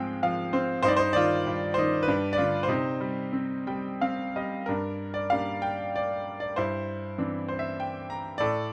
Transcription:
grand piano
Already playing: G#2 F3 G#3 C4 G#4 F5 G5
0.23 F3 F5
0.53 C4 C5
0.83 G2 D#4 C5
0.88 D5
0.97 D#4 C5
1.13 D#3 F4 D5
1.47 G2
1.74 D#3 C5
1.79 D#4
2.03 B4
2.07 G2 D4
2.33 D5
2.38 D3 F4
2.63 C5
2.68 C3 D#4
3.01 G3
3.33 C4
3.67 G3 G5
4.01 C4 F5
4.36 G3 D#5
4.66 G2 D4 A#4
5.14 D5
5.30 G3 A#3 D4 F5
5.62 G5
5.96 D5
6.40 D5
6.56 G2 E4 C5
7.18 E3 C4 D4
7.49 C5
7.59 E5
7.80 G5
8.10 A#5
8.38 A2 A4 D5

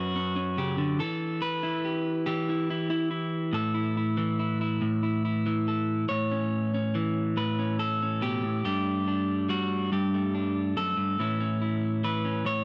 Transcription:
clean electric guitar
Already playing: F#2 C#4 F#4 B4
0.16 C#4
0.36 C#4
0.58 C#3 G4
0.78 D3
0.99 E3 A4
1.42 B4
1.63 E4
1.85 G4
2.26 E3 G4
2.49 E4
2.70 E4
2.90 E4
3.11 E4
3.53 A2 A4
3.74 E4
3.97 E4
4.17 E3
4.39 E4
4.61 E4
4.82 A2
5.03 E4
5.25 E4
5.46 E3
5.68 A4
6.09 A2 C#5
6.32 C#4
6.74 C#4
6.95 E3
7.37 A2 B4
7.59 C#4
7.79 A4
8.02 C#4
8.22 B2 G4
8.43 A2
8.65 G2 G3 A3 D4 G4
9.08 D4
9.49 G3 F#4
9.92 G2 G4
10.14 A3
10.35 D4
10.77 F#2 A4
10.97 G2
11.19 A2 E3 C#4 E4
11.41 C#4
11.62 E4
12.04 E3 B4
12.25 C#4
12.45 A2 C#5

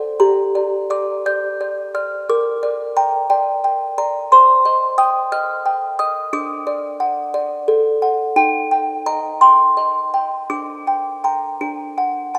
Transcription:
music box
Already playing: D4 D5 F#5
0.20 G4 A#5
0.55 D5
0.90 D5 D6
1.26 D5 G6
1.61 D5
1.94 D5 F6
2.29 A#4 D6
2.63 D5
2.97 G5 A#5
3.30 D5 G5
3.64 G5
3.98 D5 A#5
4.32 C5 C6
4.65 D#5
4.98 G5 D#6
5.32 D#5 F6
5.66 G5
5.99 D#5 D#6
6.33 D4 D6
6.67 D5
7.00 F#5
7.34 D5
7.68 A4
8.02 F#5
8.36 D#4 G5
8.71 G5
9.06 D#5 A#5
9.41 G5 C6
9.77 D#5
10.14 G5
10.50 D4 D6
10.87 G5
11.24 G5 A#5
11.61 D4
11.98 F#5
12.35 F#5 A5

